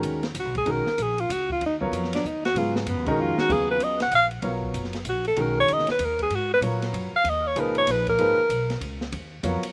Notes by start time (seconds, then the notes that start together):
Already playing: D#3 G#3 C#4 F#4 A#4
0.03 D#2, hi-hat pedal, ride
0.23 snare, ride
0.34 C#2, hi-hat pedal, ride
0.40 F#4
0.45 B1
0.55 G#1 G#4, kick, ride
0.65 B1 D#3 G#3 C#4 F#4 A#4, ride
0.71 A#4
0.87 snare
0.98 A#1, hi-hat pedal, ride
1.03 G#4
1.18 F4, ride
1.29 C#2 F#4, hi-hat pedal, ride
1.50 F4, kick
1.61 D#2, ride
1.66 D#4
1.81 F#3 B3 F4 A#4 C#5, kick
1.92 F2, hi-hat pedal, ride
2.04 snare
2.13 D4, snare, ride
2.24 D#2 D#4, hi-hat pedal
2.45 F#4, snare, ride
2.55 G#2 C#3 F#3 B3 F4 G#4, ride
2.76 G#3, snare
2.86 F#2 B3, hi-hat pedal, ride
2.96 D#2
3.06 B1 D#3 G#3 C#4 D#4 F#4 A#4, kick, ride
3.17 F2 F4
3.37 F#4, muted upright bass stroke, snare
3.49 D#2 C#3 F#3 B3 F4 G#4, kick, crash
3.71 B4
3.79 C#2, hi-hat pedal, ride
3.84 D#5
4.00 F#5, snare, ride
4.11 A#1, hi-hat pedal, ride
4.15 F5
4.31 ride
4.42 B1 F#3 B3 F4 A#4 C#5, ride
4.63 kick
4.74 F#1, hi-hat pedal, ride
4.84 snare
4.93 snare, ride
5.05 A#1, hi-hat pedal, ride
5.09 F#4
5.25 A4, ride
5.36 B1 D#3 G#3 C#4 F#4 A#4, ride
5.41 A#4
5.60 C#5
5.68 C#2, hi-hat pedal, ride
5.73 D#5
5.79 snare
5.87 muted upright bass stroke, snare, ride
5.92 B4
5.99 D#2, hi-hat pedal, ride
6.05 A#4
6.19 G#4, kick, ride
6.30 G#2, ride
6.35 F#4
6.54 B4
6.61 A#2 F#3 F4 A#4 B4 C#5, hi-hat pedal, ride
6.82 snare, ride
6.93 F#2, ride
7.12 F5, muted upright bass stroke
7.24 D#2, ride
7.29 D#5
7.47 C#5
7.56 C#2 A#2 F3 D#4 G#4 B4, hi-hat pedal, ride
7.60 A#4
7.75 C#5, ride
7.87 A#1, snare, hi-hat pedal, ride
7.91 B4
8.07 A#4, kick, ride
8.18 G#1 F3 A#3 D#4 G#4 B4, ride
8.38 muted upright bass stroke
8.49 B1, hi-hat pedal, ride
8.70 snare, ride
8.81 C#2, ride
9.01 snare
9.12 D#2, ride
9.43 F2 F#3 B3 F4 A#4 C#5, hi-hat pedal, ride
9.63 ride